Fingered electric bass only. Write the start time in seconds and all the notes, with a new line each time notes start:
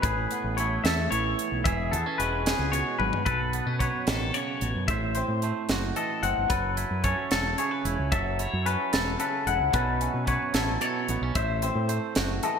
0.04 A1
0.44 A1
0.84 E2
1.12 A1
1.52 B1
1.66 E1
1.92 E2
2.19 E1
2.59 C#2
3.00 G#1
3.27 B1
3.66 B2
4.07 A1
4.62 A1
4.75 F#2
4.89 A1
5.28 A2
5.69 F#1
6.23 F#1
6.38 G1
6.50 F#1
6.91 F#2
7.32 E1
7.85 E1
7.99 C#2
8.12 F#1
8.53 F#2
8.93 E1
9.47 E1
9.60 C#2
9.74 B1
10.14 B2
10.54 A1
11.09 A1
11.22 B1
11.36 A1
11.75 A2
12.17 F#1